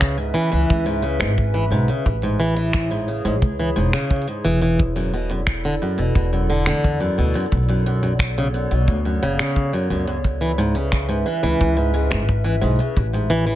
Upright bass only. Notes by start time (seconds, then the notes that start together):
Already playing: C#2
0.53 C#2
0.70 C#2
1.19 G#1
1.70 B1
2.06 A1
3.25 A1
3.42 C#2
3.77 E1
4.44 E1
5.98 E1
6.15 E1
6.67 E2
7.18 D2
7.52 B1
8.71 B1
8.88 D2
9.23 F#1
9.90 C#2
11.43 C#2
11.61 C#2
12.12 G#1
12.63 B1
12.97 A1